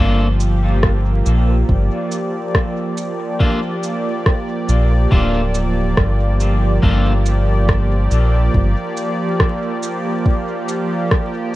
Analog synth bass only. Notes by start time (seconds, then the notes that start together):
Already playing: G1
1.26 A#1
1.69 G1
4.69 A#1
5.12 D1
5.97 G1
6.83 G1
8.11 A#1
8.54 G1